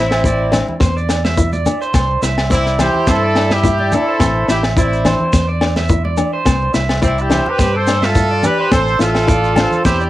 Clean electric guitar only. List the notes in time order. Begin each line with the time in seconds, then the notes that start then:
Already playing: E5
0.26 D5
0.53 muted clean electric guitar stroke
0.82 C5
0.97 D5
1.25 E5
1.53 D5
1.82 C5
1.95 C5
2.23 E5
2.52 D5
2.80 C5
3.09 C5
3.24 D5
3.52 E5
3.80 D5
4.08 C5
4.20 C5
4.49 E5
4.78 D5
5.06 C5
5.34 C5
5.49 D5
5.77 E5
6.05 D5
6.33 C5
6.45 C5
6.74 E5
7.02 D5
7.31 C5
7.58 C5
7.74 D5
8.02 E5
8.31 D5
8.60 C5
8.73 C5
9.01 E5
9.28 D5
9.57 C5
9.85 C5
10.01 D5